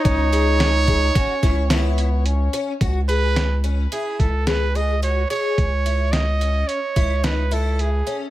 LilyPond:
<<
  \new Staff \with { instrumentName = "Trumpet" } { \time 5/4 \key cis \minor \tempo 4 = 108 cis''1 r4 | r8 b'4 r8 gis'8 a'8 b'8 dis''8 cis''8 cis''8~ | cis''4 dis''4 cis''4 b'8 a'8 gis'8. r16 | }
  \new Staff \with { instrumentName = "Twelve-string acoustic guitar" } { \time 5/4 \key cis \minor cis'8 gis'4 gis'8 fis'8 e'8 e'4 r8 cis'8 | fis'8 gis'4 cis'8 e'4 gis'8 gis'8 fis'8 gis'8~ | gis'8 e'4 cis'4 e'8 dis'8 e'4 cis'8 | }
  \new Staff \with { instrumentName = "Trombone" } { \time 5/4 \key cis \minor dis'2 cis'4 b4 cis'4 | r1 r4 | r1 r4 | }
  \new Staff \with { instrumentName = "Analog synth bass" } { \clef bass \time 5/4 \key cis \minor cis,2~ cis,8 cis,2~ cis,8 | cis,2~ cis,8 cis,2~ cis,8 | cis,2~ cis,8 cis,2~ cis,8 | }
  \new DrumStaff \with { instrumentName = "Drums" } \drummode { \time 5/4 <hh bd>8 hh8 <hh sn>8 <hh bd>8 <hh bd>8 <hh bd sn>8 <hh sn>8 hh8 hh8 hh8 | <hh bd>8 hh8 <hh sn>8 hh8 hh8 <hh bd>8 <hh sn>8 hh8 hh8 hh8 | <hh bd>8 hh8 <hh sn>8 hh8 hh8 <hh bd>8 <hh sn>8 hh8 hh8 hh8 | }
>>